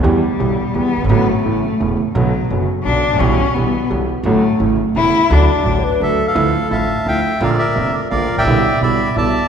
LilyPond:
<<
  \new Staff \with { instrumentName = "Bandoneon" } { \time 3/4 \key d \major \tempo 4 = 171 << { r2. | r2. | r2. | r2. |
r2. | r2 e''8. f''16~ | \key bes \lydian f''4 a''4 g''4 | f''8 e''4 d''8 f''8. g''16~ |
g''4 b''4 a''4 | } \\ { r2. | r2. | r2. | r2. |
r2. | r2 a'8. a'16~ | a'4 <e'' f''>4 e''4 | <bes' d''>8 bes'4. <bes' d''>8. <d'' e''>16~ |
<d'' e''>4 <d'' e''>4 <d'' e''>4 | } >> }
  \new Staff \with { instrumentName = "Flute" } { \time 3/4 \key d \major r2. | r2. | r2. | r2. |
r2. | r4 fis'16. cis''32 b'8 a'4 | \key bes \lydian r2. | r2. |
r2. | }
  \new Staff \with { instrumentName = "Cello" } { \time 3/4 \key d \major g2 b4 | b8 a2 r8 | fis4. r8 d'4 | cis'4 b4 r4 |
a4. r8 e'4 | d'2 r4 | \key bes \lydian r2. | r2. |
r2. | }
  \new Staff \with { instrumentName = "Grand piano" } { \clef bass \time 3/4 \key d \major <e, e g b g'>8 r8 <b,, b, e g b g'>8 r8 <e, e g b g'>8 r32 fis,,32 g,,32 gis,,32 | <a,, a, d fis a fis'>8 r8 <a,, a, cis e a e'>8 r8 <e,, e, cis e a e'>8 r8 | <b,, b, d fis b fis'>8 r8 <fis,, fis, d fis b fis'>8 r8 <b,, b, d fis b fis'>8 r32 gis,,32 a,,32 bes,,32 | <b,, b, e g b g'>8 r8 <b,, b, e g b g'>8 r8 <b,, b, e g b g'>8 r8 |
<a,, a, d fis a fis'>8 r8 <a,, a, cis e a e'>8 r8 <e,, e, cis e a e'>8 r8 | <d, d fis a fis'>8 r8 <a,, a, d fis a fis'>8 r8 <d, d fis a fis'>8 r8 | \key bes \lydian <d, d f a e'>8 r8 <a,, a, d f a e'>8 r8 <d, d f a e'>8 r8 | <bes,, bes, d f bes f'>8 r8 <f,, f, d f bes f'>8 r8 <bes,, bes, d f bes f'>8 r32 gis,,32 a,,32 bes,,32 |
<b,, b, d g b e'>8 r8 <b,, b, d g b e'>8 r8 <b,, b, d g b e'>8 r8 | }
  \new Staff \with { instrumentName = "Upright bass" } { \clef bass \time 3/4 \key d \major e,16. r8 r32 b,,16. r8 r32 e,16. r16 fis,,32 g,,32 gis,,32 | a,,16. r8 r32 a,,16. r8 r32 e,,16. r8 r32 | b,,16. r8 r32 fis,,16. r8 r32 b,,16. r16 gis,,32 a,,32 bes,,32 | b,,16. r8 r32 b,,16. r8 r32 b,,16. r8 r32 |
a,,16. r8 r32 a,,16. r8 r32 e,,16. r8 r32 | d,16. r8 r32 a,,16. r8 r32 d,16. r8 r32 | \key bes \lydian d,16. r8 r32 a,,16. r8 r32 d,16. r8 r32 | bes,,16. r8 r32 f,,16. r8 r32 bes,,16. r16 gis,,32 a,,32 bes,,32 |
b,,16. r8 r32 b,,16. r8 r32 b,,16. r8 r32 | }
>>